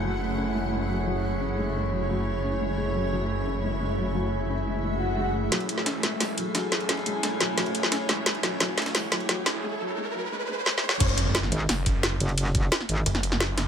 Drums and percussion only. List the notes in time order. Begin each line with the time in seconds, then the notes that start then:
5.52 snare, closed hi-hat, ride
5.60 ride
5.69 closed hi-hat, ride
5.78 snare
5.86 snare, closed hi-hat, ride
6.03 snare, closed hi-hat, ride
6.20 snare, closed hi-hat, open hi-hat
6.38 closed hi-hat, ride
6.55 snare, closed hi-hat, ride
6.72 snare, closed hi-hat, ride
6.80 ride
6.89 snare, closed hi-hat, ride
6.98 snare
7.06 closed hi-hat, ride
7.23 snare, closed hi-hat, ride
7.40 snare, closed hi-hat, ride
7.58 snare, closed hi-hat, ride
7.66 ride
7.75 closed hi-hat, ride
7.83 snare
7.92 snare, closed hi-hat, ride
8.09 snare, closed hi-hat, ride
8.26 snare, closed hi-hat, ride
8.35 ride
8.43 snare, closed hi-hat, ride
8.60 snare, closed hi-hat, ride
8.78 snare, closed hi-hat, ride
8.82 snare, ride
8.86 snare, ride
8.95 snare, closed hi-hat, open hi-hat
9.12 snare, closed hi-hat, ride
9.20 ride
9.29 snare, closed hi-hat, ride
9.46 snare, closed hi-hat, ride
10.66 snare
10.78 snare
10.89 snare
11.00 kick, closed hi-hat, crash, ride
11.09 ride
11.18 closed hi-hat, ride
11.35 snare, closed hi-hat, ride
11.43 snare
11.52 closed hi-hat, ride
11.69 snare, closed hi-hat, open hi-hat
11.86 kick, closed hi-hat, ride
12.03 snare, closed hi-hat, ride
12.20 closed hi-hat, ride
12.29 ride
12.38 closed hi-hat, ride
12.46 snare
12.55 kick, closed hi-hat, ride
12.72 snare, closed hi-hat, ride
12.80 snare
12.89 closed hi-hat, ride
13.06 closed hi-hat, ride
13.15 snare, ride
13.23 closed hi-hat, ride
13.32 snare
13.40 snare, closed hi-hat, ride
13.58 snare, closed hi-hat, ride